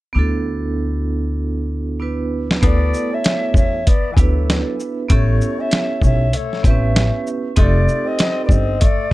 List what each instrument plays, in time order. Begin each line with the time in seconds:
0.13 upright bass D2, vibraphone B3 D4 E4
0.17 vibraphone F#4 A4
1.99 vibraphone B3 D4 E4 F#4 B4
2.51 snare
2.61 upright bass D2, vibraphone A3 B3 E4 F#4 A4, tenor saxophone B3, kick, closed hi-hat
2.65 ocarina D5
2.94 shaker
3.12 tenor saxophone C#4, ocarina E5
3.24 snare, closed hi-hat
3.54 upright bass E2, tenor saxophone C#4, ocarina E5, kick, shaker
3.87 tenor saxophone B3, ocarina D5, kick, closed hi-hat
4.12 tenor saxophone E3, ocarina G#5
4.17 upright bass D2, tenor saxophone F#3, vibraphone B3 D4 E4 F#4 B4, ocarina A4, kick, closed hi-hat, shaker
4.50 snare, closed hi-hat
4.80 shaker
5.09 upright bass A1, tenor saxophone A3, vibraphone B3 C#4 E4 G4 A4, ocarina C#5, kick, closed hi-hat
5.41 shaker
5.59 tenor saxophone C#4, ocarina E5
5.71 snare, closed hi-hat
6.02 upright bass B1, tenor saxophone C#4, ocarina E5, kick, shaker
6.33 tenor saxophone A3, ocarina C#5, closed hi-hat
6.53 snare
6.63 upright bass A1, vibraphone B3 C4 E4 G4 B4, tenor saxophone C#4, ocarina E5, kick, closed hi-hat, shaker
6.70 vibraphone C#4
6.96 snare, closed hi-hat
7.27 shaker
7.56 upright bass F1, tenor saxophone A3, vibraphone C4 D#4 F4 G4 A4, ocarina D#5, kick, closed hi-hat
7.62 ocarina D5
7.88 shaker
8.05 tenor saxophone C4, ocarina D#5
8.19 snare, closed hi-hat
8.43 tenor saxophone B3, ocarina D5
8.49 upright bass G1, tenor saxophone C4, ocarina D#5, kick, shaker
8.80 tenor saxophone A3, ocarina D5, kick, closed hi-hat